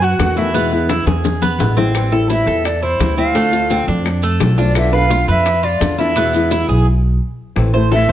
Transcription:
Already playing: upright bass F#2
0.02 cuban tres F#4, flute F#5, high bongo
0.19 upright bass E2, nylon-string guitar D#3 A3 B3 F#4, high bongo, low bongo, maracas
0.36 nylon-string guitar D#3 A3 B3 F#4, cuban tres E4, flute E5, maracas
0.53 nylon-string guitar B2 E3 G#3 B3 E4, cuban tres B3, high bongo, maracas
0.72 nylon-string guitar E3 G#3 B3 E4
0.88 nylon-string guitar E3 G#3 B3 E4, cuban tres E4, low bongo, maracas
1.06 upright bass E2, cuban tres G#4, low bongo, maracas
1.24 muted nylon-string guitar stroke, low bongo, maracas
1.42 cuban tres B3, low bongo, maracas
1.59 upright bass A1, nylon-string guitar E3 G#3 B3 E4, low bongo, maracas
1.77 nylon-string guitar E3 G#3 B3 E4, cuban tres C4, low bongo, maracas
1.94 nylon-string guitar E3 G3 C4 E4, high bongo, maracas
2.12 nylon-string guitar G3 C4 E4, cuban tres A4, high bongo
2.29 nylon-string guitar E3 G3 C4 E4, cuban tres E4, flute E5, high bongo, maracas
2.46 upright bass E2, cuban tres A4, high bongo, maracas
2.64 flute D5, muted nylon-string guitar stroke, high bongo, maracas
2.82 cuban tres E4, flute C5, high bongo
2.99 upright bass D2, nylon-string guitar E3 G3 C4 E4, high bongo, low bongo, maracas
3.17 nylon-string guitar G3 C4 E4, cuban tres C4, flute F5, maracas
3.34 nylon-string guitar D3 A3 C4 F4, cuban tres A3, high bongo, maracas
3.52 nylon-string guitar A3 C4 F4, high bongo, maracas
3.69 nylon-string guitar D3 A3 C4 F4, cuban tres C4, high bongo, maracas
3.87 upright bass F2, cuban tres D4, high bongo, maracas
4.05 muted nylon-string guitar stroke, high bongo, maracas
4.22 cuban tres A3, maracas
4.40 upright bass B1, nylon-string guitar D3 A3 C4 F4, high bongo, low bongo, maracas
4.58 nylon-string guitar A3 C4 F4, cuban tres D4, flute D5, high bongo, maracas
4.75 nylon-string guitar B2 D3 B3 D4 F4, flute E5, high bongo, maracas
4.92 nylon-string guitar D3 B3 D4 F4, cuban tres B4, flute F5, high bongo
5.09 nylon-string guitar D3 B3 D4 F4, cuban tres F4, high bongo, maracas
5.28 upright bass F2, cuban tres B4, flute E5, high bongo, maracas
5.45 muted nylon-string guitar stroke, high bongo, maracas
5.63 cuban tres F4, flute D5, high bongo
5.80 upright bass E2, nylon-string guitar D3 B3 D4 F4, high bongo, low bongo, maracas
5.98 nylon-string guitar D3 B3 D4 F4, cuban tres E4, flute E5, maracas
6.16 nylon-string guitar B2 E3 G#3 B3 E4, cuban tres B3, high bongo, maracas
6.33 nylon-string guitar E3 G#3 B3 E4, high bongo, maracas
6.51 nylon-string guitar E3 G#3 B3 E4, cuban tres E4, high bongo, maracas
6.68 upright bass B1, cuban tres G#4, high bongo, maracas
7.56 upright bass A1, nylon-string guitar E3 A3 C4 E4, high bongo
7.74 nylon-string guitar A3 C4 E4, cuban tres C5, high bongo
7.91 nylon-string guitar E3 A3 C4 E4, cuban tres A4, flute E5, high bongo
8.09 upright bass E2

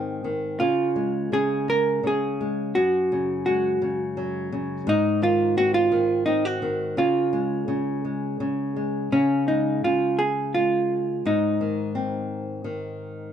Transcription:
Already playing: nylon-string guitar G#2 D#3 C4, hollow-body jazz guitar D#4
0.24 nylon-string guitar D#3
0.60 nylon-string guitar C#3, hollow-body jazz guitar F4
0.96 nylon-string guitar G#3
1.32 nylon-string guitar C#3, hollow-body jazz guitar G#4
1.68 nylon-string guitar G#3, hollow-body jazz guitar A#4
2.03 nylon-string guitar C#3, hollow-body jazz guitar G#4
2.41 nylon-string guitar G#3
2.75 nylon-string guitar F#2, hollow-body jazz guitar F#4
3.12 nylon-string guitar C#3
3.46 nylon-string guitar G#3, hollow-body jazz guitar F#4
3.82 nylon-string guitar C#3
4.17 nylon-string guitar F#3
4.52 nylon-string guitar C#3
4.87 nylon-string guitar G#2, hollow-body jazz guitar D#4
5.22 nylon-string guitar D#3, hollow-body jazz guitar F4
5.57 nylon-string guitar C4, hollow-body jazz guitar F#4
5.74 hollow-body jazz guitar F4
5.92 nylon-string guitar D#3
6.26 nylon-string guitar C4, hollow-body jazz guitar D#4
6.45 hollow-body jazz guitar F#4
6.62 nylon-string guitar D#3
6.97 nylon-string guitar C#3, hollow-body jazz guitar F4
7.33 nylon-string guitar G#3
7.68 nylon-string guitar C#3
8.05 nylon-string guitar G#3
8.40 nylon-string guitar C#3
8.76 nylon-string guitar G#3
9.12 nylon-string guitar C#3, hollow-body jazz guitar C#4
9.48 nylon-string guitar G#3, hollow-body jazz guitar D#4
9.84 nylon-string guitar C#3, hollow-body jazz guitar F4
10.19 hollow-body jazz guitar G#4
10.54 nylon-string guitar G#3, hollow-body jazz guitar F4
11.25 nylon-string guitar G#2, hollow-body jazz guitar D#4
11.61 nylon-string guitar D#3
11.95 nylon-string guitar C4
12.64 nylon-string guitar D#3

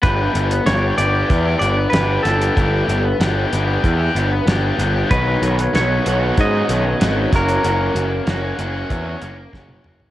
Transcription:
0.02 picked electric bass G1, overdriven electric guitar B3 D4 G4, clean electric guitar B4, kick, closed hi-hat
0.35 picked electric bass G1, closed hi-hat
0.51 muted overdriven electric guitar stroke, closed hi-hat
0.66 picked electric bass G1, overdriven electric guitar B3 D4 G4, clean electric guitar C#5, snare, closed hi-hat
0.98 picked electric bass G1, overdriven electric guitar B3 D4 G4, clean electric guitar D5, closed hi-hat
1.14 overdriven electric guitar D4 G4
1.30 picked electric bass E2, kick, closed hi-hat
1.45 overdriven electric guitar D4 G4
1.59 picked electric bass G1, overdriven electric guitar B3 D4, clean electric guitar D5, closed hi-hat
1.64 overdriven electric guitar G4
1.77 muted overdriven electric guitar stroke
1.90 picked electric bass G1, overdriven electric guitar B3 D4, clean electric guitar B4, closed hi-hat
1.94 overdriven electric guitar G4, snare
2.23 picked electric bass G1, overdriven electric guitar B3 D4, clean electric guitar A4, snare, closed hi-hat
2.27 overdriven electric guitar G4
2.40 overdriven electric guitar D4 G4, closed hi-hat
2.56 picked electric bass G1, overdriven electric guitar B3 D4 G4, kick, closed hi-hat
2.88 picked electric bass G1, closed hi-hat
3.05 muted overdriven electric guitar stroke
3.20 picked electric bass G1, overdriven electric guitar B3 D4 G4, snare, closed hi-hat
3.52 picked electric bass G1, overdriven electric guitar B3 D4 G4, closed hi-hat
3.67 overdriven electric guitar D4 G4
3.84 picked electric bass E2, kick, closed hi-hat
3.99 overdriven electric guitar D4 G4
4.15 picked electric bass G1, overdriven electric guitar B3 D4 G4, closed hi-hat
4.32 muted overdriven electric guitar stroke
4.47 picked electric bass G1, overdriven electric guitar B3 D4 G4, snare, closed hi-hat
4.78 picked electric bass G1, overdriven electric guitar B3 D4 G4, closed hi-hat
4.94 overdriven electric guitar D4 G4
5.10 picked electric bass B1, overdriven electric guitar D#3 F#3 B3 D#4 F#4, clean electric guitar B4, kick, closed hi-hat
5.42 picked electric bass B1, closed hi-hat
5.59 muted overdriven electric guitar stroke, closed hi-hat
5.73 picked electric bass B1, overdriven electric guitar F#3 B3 D#4 F#4, clean electric guitar C#5, snare, closed hi-hat
6.06 picked electric bass B1, overdriven electric guitar F#3 B3 D#4 F#4, closed hi-hat
6.21 overdriven electric guitar B3 D#4 F#4
6.37 picked electric bass G#2, overdriven electric guitar C#4, clean electric guitar D#5, kick, closed hi-hat
6.53 overdriven electric guitar B3 D#4 F#4
6.69 picked electric bass B1, overdriven electric guitar D#3 F#3 B3 D#4 F#4, closed hi-hat
6.85 muted overdriven electric guitar stroke
7.00 picked electric bass G#1, overdriven electric guitar F#3 B3 C#4 D#4 F#4, snare, closed hi-hat
7.31 picked electric bass F#1, overdriven electric guitar A#3 C#4 F#4, kick, snare, closed hi-hat
7.36 clean electric guitar A#4
7.47 overdriven electric guitar C#4 F#4, closed hi-hat
7.63 picked electric bass F#1, overdriven electric guitar A#3 C#4 F#4, closed hi-hat
7.95 picked electric bass F#1, closed hi-hat
8.12 muted overdriven electric guitar stroke
8.26 picked electric bass F#1, overdriven electric guitar A#3 C#4 F#4, snare, closed hi-hat
8.57 picked electric bass F#1, overdriven electric guitar A#3 C#4 F#4 G#4, closed hi-hat
8.73 overdriven electric guitar C#4 F#4
8.90 picked electric bass E2, overdriven electric guitar C#4, kick, closed hi-hat
9.04 overdriven electric guitar C#4 F#4
9.20 picked electric bass F#1, overdriven electric guitar A#3 C#4 F#4, closed hi-hat
9.38 muted overdriven electric guitar stroke
9.53 picked electric bass F#1, overdriven electric guitar A#3 C#4 F#4, kick, snare
9.69 high tom
9.84 picked electric bass F#1, overdriven electric guitar A#3 C#4 F#4, mid tom
10.00 overdriven electric guitar C#4 F#4, floor tom

